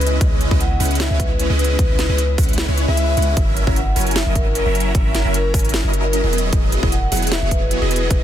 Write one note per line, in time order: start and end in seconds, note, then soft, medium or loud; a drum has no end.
0.00 0.19 C#2 loud
0.00 3.33 C#3 medium
0.00 0.19 G#3 medium
0.00 3.33 B3 medium
0.00 0.19 C#4 medium
0.00 0.19 E4 medium
0.00 3.33 E4 medium
0.00 0.12 B4 medium
0.00 0.19 B4 medium
0.00 0.19 D#5 medium
0.00 3.33 D#5 medium
0.00 closed hi-hat medium
0.07 closed hi-hat medium
0.21 0.49 C#2 loud
0.21 0.49 G#3 medium
0.21 0.49 C#4 medium
0.21 0.49 E4 medium
0.21 0.49 B4 medium
0.21 0.49 D#5 medium
0.21 kick loud
0.21 closed hi-hat medium
0.41 closed hi-hat medium
0.51 0.78 C#2 loud
0.51 0.63 G#3 medium
0.51 0.63 C#4 medium
0.51 0.63 E4 medium
0.51 0.63 B4 medium
0.51 0.63 D#5 medium
0.51 kick loud
0.60 0.67 F#5 medium
0.60 closed hi-hat medium
0.71 0.77 F#5 medium
0.80 1.08 C#2 loud
0.80 1.08 G#3 medium
0.80 1.08 C#4 medium
0.80 1.08 E4 medium
0.80 1.08 B4 medium
0.80 1.08 F#5 medium
0.80 open hi-hat medium
0.85 closed hi-hat medium
0.91 closed hi-hat soft
0.95 closed hi-hat medium
1.00 1.07 E5 medium
1.00 snare loud
1.00 closed hi-hat medium
1.10 1.48 C#2 loud
1.10 1.47 G#3 medium
1.10 1.47 C#4 medium
1.10 1.47 E4 medium
1.10 1.47 B4 medium
1.10 1.47 C#5 medium
1.10 1.16 E5 medium
1.20 1.26 B4 medium
1.20 kick medium
1.20 closed hi-hat medium
1.30 1.36 B4 medium
1.40 closed hi-hat medium
1.50 1.77 C#2 loud
1.50 1.77 G#3 medium
1.50 1.77 C#4 medium
1.50 1.77 E4 medium
1.50 1.77 B4 medium
1.50 1.77 D#5 medium
1.59 1.77 B4 loud
1.59 closed hi-hat soft
1.64 closed hi-hat medium
1.79 2.07 C#2 loud
1.79 2.07 G#3 medium
1.79 2.07 C#4 medium
1.79 2.07 E4 medium
1.79 2.07 B4 medium
1.79 1.86 B4 medium
1.79 2.07 D#5 loud
1.79 kick loud
1.79 closed hi-hat medium
1.89 1.95 B4 medium
1.99 snare medium
1.99 closed hi-hat medium
2.09 2.36 C#2 loud
2.09 2.21 G#3 medium
2.09 2.21 C#4 medium
2.09 2.21 E4 medium
2.09 2.21 B4 medium
2.09 2.26 B4 medium
2.09 2.21 D#5 medium
2.18 closed hi-hat medium
2.38 2.66 C#2 loud
2.38 2.66 G#3 medium
2.38 2.66 C#4 medium
2.38 2.66 E4 medium
2.38 2.66 B4 medium
2.38 2.66 F#5 medium
2.38 kick loud
2.38 open hi-hat medium
2.43 closed hi-hat medium
2.49 closed hi-hat soft
2.53 closed hi-hat medium
2.58 snare loud
2.58 closed hi-hat medium
2.68 2.86 C#2 loud
2.68 2.86 G#3 medium
2.68 2.86 C#4 medium
2.68 2.86 E4 medium
2.68 2.86 B4 medium
2.68 2.86 C#5 medium
2.78 closed hi-hat medium
2.88 3.15 C#2 loud
2.88 3.15 G#3 medium
2.88 3.15 C#4 medium
2.88 3.15 E4 medium
2.88 3.15 B4 medium
2.88 3.15 E5 loud
2.88 3.05 E5 medium
2.97 closed hi-hat medium
3.08 3.37 E5 medium
3.17 3.35 C#2 loud
3.17 3.35 G#3 medium
3.17 3.35 C#4 medium
3.17 3.35 E4 medium
3.17 3.35 B4 medium
3.17 3.35 F#5 medium
3.17 closed hi-hat soft
3.22 closed hi-hat medium
3.37 3.65 F#1 loud
3.37 3.65 F#3 medium
3.37 6.30 F#3 medium
3.37 3.65 C#4 medium
3.37 6.30 C#4 medium
3.37 3.65 E4 medium
3.37 6.30 E4 medium
3.37 3.65 A#4 medium
3.37 6.30 A#4 loud
3.37 3.65 E5 medium
3.37 kick loud
3.37 closed hi-hat medium
3.57 closed hi-hat medium
3.67 3.94 F#1 loud
3.67 3.79 F#3 medium
3.67 3.79 C#4 medium
3.67 3.79 E4 medium
3.67 3.79 A#4 medium
3.67 3.79 E5 medium
3.67 kick loud
3.76 3.83 F#5 medium
3.76 closed hi-hat medium
3.87 3.93 F#5 medium
3.96 4.24 F#1 loud
3.96 4.24 F#3 medium
3.96 4.24 C#4 medium
3.96 4.24 E4 medium
3.96 4.24 A#4 medium
3.96 4.24 G#5 medium
3.96 open hi-hat medium
4.01 closed hi-hat medium
4.07 closed hi-hat soft
4.11 closed hi-hat medium
4.16 4.22 E5 medium
4.16 snare loud
4.16 closed hi-hat medium
4.26 4.64 F#1 loud
4.26 4.63 F#3 medium
4.26 4.63 C#4 medium
4.26 4.63 E4 medium
4.26 4.63 A#4 medium
4.26 4.63 D#5 medium
4.26 4.32 E5 medium
4.35 4.42 A#4 medium
4.35 kick medium
4.35 closed hi-hat medium
4.46 4.52 A#4 medium
4.55 4.73 A#4 medium
4.55 closed hi-hat medium
4.66 4.93 F#1 loud
4.66 4.92 F#3 medium
4.66 4.92 C#4 medium
4.66 4.92 E4 medium
4.66 4.92 A#4 medium
4.66 4.92 E5 medium
4.75 closed hi-hat soft
4.80 closed hi-hat medium
4.94 5.23 F#1 loud
4.94 5.22 F#3 medium
4.94 5.22 C#4 medium
4.94 5.22 E4 medium
4.94 5.22 A#4 medium
4.94 5.22 E5 loud
4.94 kick loud
4.94 closed hi-hat medium
5.15 snare medium
5.15 closed hi-hat medium
5.25 5.52 F#1 loud
5.25 5.37 F#3 medium
5.25 5.37 C#4 medium
5.25 5.37 E4 medium
5.25 5.37 A#4 medium
5.25 5.37 E5 medium
5.34 5.64 A#4 medium
5.34 closed hi-hat medium
5.54 5.82 F#1 loud
5.54 5.82 F#3 medium
5.54 5.82 C#4 medium
5.54 5.82 E4 medium
5.54 5.82 A#4 medium
5.54 5.82 G#5 medium
5.54 kick loud
5.54 open hi-hat loud
5.59 closed hi-hat medium
5.65 closed hi-hat soft
5.69 closed hi-hat medium
5.74 snare loud
5.74 closed hi-hat medium
5.84 6.22 F#1 loud
5.84 6.21 F#3 medium
5.84 6.21 C#4 medium
5.84 6.21 E4 medium
5.84 6.21 A#4 medium
5.84 6.21 D#5 medium
5.94 closed hi-hat medium
6.04 6.11 A#4 medium
6.13 6.37 A#4 medium
6.13 closed hi-hat medium
6.24 6.51 E1 loud
6.24 6.50 F#3 medium
6.24 6.50 B3 medium
6.24 6.50 E4 medium
6.24 6.50 G#4 medium
6.24 6.50 D#5 medium
6.33 8.23 E3 medium
6.33 8.23 F#4 medium
6.33 8.23 G#4 medium
6.33 8.23 D#5 medium
6.33 closed hi-hat soft
6.38 closed hi-hat medium
6.53 6.81 E1 loud
6.53 6.80 F#3 medium
6.53 6.80 B3 medium
6.53 6.80 E4 medium
6.53 6.80 G#4 medium
6.53 6.80 D#5 loud
6.53 kick loud
6.53 closed hi-hat medium
6.72 closed hi-hat medium
6.83 7.10 E1 loud
6.83 6.95 F#3 medium
6.83 6.95 B3 medium
6.83 6.95 E4 medium
6.83 6.95 G#4 medium
6.83 6.95 D#5 medium
6.83 kick loud
6.92 6.99 F#5 medium
6.92 closed hi-hat medium
7.03 7.09 F#5 medium
7.12 7.40 E1 loud
7.12 7.40 F#3 medium
7.12 7.40 B3 medium
7.12 7.40 E4 medium
7.12 7.40 G#4 medium
7.12 7.40 F#5 medium
7.12 open hi-hat loud
7.17 closed hi-hat medium
7.22 closed hi-hat medium
7.27 closed hi-hat medium
7.32 7.38 E5 medium
7.32 snare loud
7.32 closed hi-hat medium
7.42 7.80 E1 loud
7.42 7.79 F#3 medium
7.42 7.79 B3 medium
7.42 7.79 E4 medium
7.42 7.79 G#4 medium
7.42 7.79 C#5 medium
7.42 7.48 E5 medium
7.51 7.58 B4 medium
7.51 kick medium
7.51 closed hi-hat medium
7.62 7.68 B4 medium
7.71 closed hi-hat medium
7.82 8.09 E1 loud
7.82 8.08 F#3 medium
7.82 8.08 B3 medium
7.82 8.08 E4 medium
7.82 8.08 G#4 medium
7.82 8.08 D#5 medium
7.91 8.09 B4 medium
7.91 closed hi-hat medium
7.96 closed hi-hat medium
8.11 8.23 E1 loud
8.11 8.17 B4 medium
8.11 kick loud
8.11 closed hi-hat medium